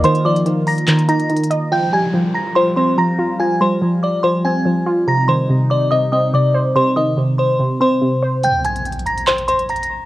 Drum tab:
HH |x--x-----x--x-----o--x--x--x--x--x--x-x-x-x-----|------------------------------------------------|------------------------------------------------|------------------------------------------------|
CP |------------------------x-----------------------|------------------------------------------------|------------------------------------------------|------------------------------------------------|

HH |------------------------------------------------|x-----x--x--x-x-x-x--x--x--x--x--x--x-x-x-------|
CP |------------------------------------------------|------------------------x-----------------------|